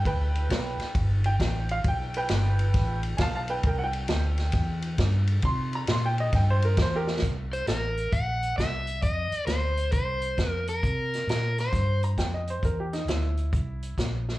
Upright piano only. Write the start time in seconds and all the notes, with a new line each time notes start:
0.07 B4 G5
1.26 G5
1.71 F5
1.88 G5
2.17 B4 G5
3.17 F5 G#5
3.22 A5
3.35 F5 A5
3.50 B4 G5
3.67 A#4 G5
3.79 F#5
3.83 G5
5.45 C6
5.75 A#5
5.91 C6
6.06 G5
6.20 D#5
6.35 G5
6.50 C5
6.65 A#4
6.82 C5
6.96 G4 A#4
12.04 A#5
12.18 G5
12.34 D#5
12.50 C5
12.65 A#4
12.80 G4
12.93 D#4
13.08 E4